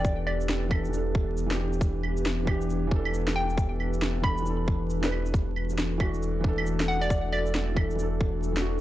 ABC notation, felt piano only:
X:1
M:4/4
L:1/16
Q:"Swing 16ths" 1/4=136
K:Em
V:1 name="Felt piano"
[E,DA]6 [E,DA]2 [E,DA]4- [E,DA] [E,DG]3- | [E,DG]6 [E,DG]4 [E,DA]6- | [E,DA]6 [E,DA]2 [E,DA]4- [E,DA] [E,DB]3 | z6 [E,DF]4 [E,DA]6- |
[E,DA]6 [E,DA]2 [E,DA]4- [E,DA] [E,DF]3 |]